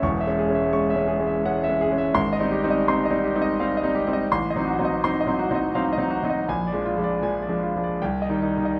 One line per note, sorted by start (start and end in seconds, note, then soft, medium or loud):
0.02 0.26 E1 medium
0.02 0.26 E2 medium
0.02 0.32 C#6 medium
0.21 0.49 E5 medium
0.27 0.47 G#3 medium
0.27 0.48 C#4 medium
0.39 0.67 G#4 medium
0.49 0.71 G#3 medium
0.49 0.71 C#4 medium
0.54 0.84 E5 medium
0.72 0.94 G#3 medium
0.72 0.94 C#4 medium
0.72 1.02 C#6 medium
0.90 1.20 E5 medium
0.95 1.18 G#3 medium
0.95 1.18 C#4 medium
1.08 1.37 G#4 medium
1.20 1.42 G#3 medium
1.20 1.42 C#4 medium
1.27 1.56 E5 medium
1.45 1.66 G#3 medium
1.45 1.67 C#4 medium
1.45 1.63 F#5 medium
1.64 1.91 E5 medium
1.69 1.90 G#3 medium
1.69 1.90 C#4 medium
1.81 2.09 G#4 medium
1.92 2.13 G#3 medium
1.92 2.13 C#4 medium
1.98 2.16 E5 medium
2.14 2.38 G#1 medium
2.14 2.43 C6 medium
2.33 2.61 D#5 medium
2.39 2.60 G3 medium
2.39 2.61 C4 medium
2.39 2.61 D#4 medium
2.51 2.79 G4 medium
2.63 2.84 G3 medium
2.63 2.85 C4 medium
2.63 2.85 D#4 medium
2.70 2.98 D#5 medium
2.88 3.09 G3 medium
2.88 3.09 C4 medium
2.88 3.09 D#4 medium
2.88 3.16 C6 medium
3.05 3.34 D#5 medium
3.10 3.32 G3 medium
3.10 3.32 C4 medium
3.10 3.32 D#4 medium
3.24 3.52 G4 medium
3.35 3.56 G3 medium
3.35 3.57 C4 medium
3.35 3.57 D#4 medium
3.42 3.70 D#5 medium
3.60 3.81 G3 medium
3.60 3.81 C4 medium
3.60 3.82 D#4 medium
3.60 3.77 F5 medium
3.77 4.06 D#5 medium
3.83 4.04 G3 medium
3.83 4.05 C4 medium
3.83 4.05 D#4 medium
3.95 4.24 G4 medium
4.07 4.28 G3 medium
4.07 4.29 C4 medium
4.07 4.29 D#4 medium
4.13 4.31 D#5 medium
4.32 4.55 A1 medium
4.32 4.60 C6 medium
4.50 4.79 D#5 medium
4.56 4.77 F#3 medium
4.56 4.78 C4 medium
4.56 4.78 D#4 medium
4.67 4.96 F#4 medium
4.79 5.01 F#3 medium
4.79 5.01 C4 medium
4.79 5.01 D#4 medium
4.85 5.14 D#5 medium
5.04 5.25 F#3 medium
5.04 5.25 C4 medium
5.04 5.25 D#4 medium
5.04 5.32 C6 medium
5.21 5.49 D#5 medium
5.27 5.48 F#3 medium
5.27 5.49 C4 medium
5.27 5.48 D#4 medium
5.39 5.68 F#4 medium
5.51 5.72 F#3 medium
5.51 5.72 C4 medium
5.51 5.72 D#4 medium
5.55 5.85 D#5 medium
5.75 5.96 F#3 medium
5.75 5.97 C4 medium
5.75 5.97 D#4 medium
5.75 5.93 F5 medium
5.93 6.22 D#5 medium
5.98 6.20 F#3 medium
5.98 6.20 C4 medium
5.98 6.21 D#4 medium
6.10 6.40 F#4 medium
6.23 6.45 F#3 medium
6.23 6.46 C4 medium
6.23 6.46 D#4 medium
6.30 6.48 D#5 medium
6.49 6.72 A#1 medium
6.49 6.78 G#5 medium
6.67 6.96 D5 medium
6.73 6.95 F3 medium
6.73 6.95 G#3 medium
6.73 6.95 D4 medium
6.86 7.15 F4 medium
6.98 7.20 F3 medium
6.98 7.21 G#3 medium
6.98 7.21 D4 medium
7.03 7.34 D5 medium
7.23 7.46 F3 medium
7.23 7.46 G#3 medium
7.23 7.46 D4 medium
7.23 7.53 G#5 medium
7.42 7.73 D5 medium
7.49 7.72 F3 medium
7.49 7.72 G#3 medium
7.49 7.72 D4 medium
7.63 7.94 F4 medium
7.76 7.99 F3 soft
7.76 7.99 G#3 soft
7.76 7.99 D4 medium
7.84 8.02 D5 medium
8.02 8.28 C2 medium
8.02 8.34 G5 medium
8.22 8.55 D#5 medium
8.29 8.54 D#3 soft
8.29 8.54 G3 medium
8.29 8.41 D#4 medium
8.43 8.56 D#4 medium
8.58 8.79 D#3 soft
8.58 8.79 G3 medium
8.58 8.79 D#4 medium
8.65 8.79 D#5 medium